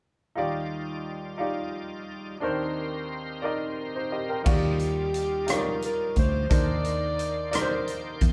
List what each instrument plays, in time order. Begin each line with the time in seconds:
0.35 grand piano D#2 D#3 D#4 F4 G4 D5, tonewheel organ G3 D#4 F4 D5
1.38 grand piano D#4 F4 G4 D5
2.40 grand piano D#2 D#3 D4 D#4 A#4 C5, tonewheel organ D#3 C4 G4 A#4 C5
3.42 grand piano D#4 A#4 D5 D#5
3.96 grand piano D#4 C5
4.12 grand piano G4 D#5
4.29 grand piano A#4 G5
4.44 fingered electric bass D#2, grand piano D#3 D#4 F4 F#4 D5, tonewheel organ G3 D#4 F4 D5, alto saxophone G4, kick, crash
4.52 grand piano G4
4.79 closed hi-hat
5.14 closed hi-hat
5.47 grand piano D#4 F4 G4 C#5, cross-stick, closed hi-hat
5.52 alto saxophone A#4
5.56 grand piano D5
5.82 alto saxophone A#4, closed hi-hat
6.16 fingered electric bass D2, alto saxophone C5, kick, closed hi-hat
6.50 fingered electric bass D#2, tonewheel organ D#3 A#3 C5 D5, grand piano D#3 D4 D#4 A#4 C5, kick, closed hi-hat
6.54 alto saxophone D5
6.84 closed hi-hat
7.19 closed hi-hat
7.51 grand piano D#4 A#4 D5, cross-stick, closed hi-hat
7.61 grand piano C5
7.86 tonewheel organ G5, closed hi-hat
8.21 fingered electric bass E2, kick, closed hi-hat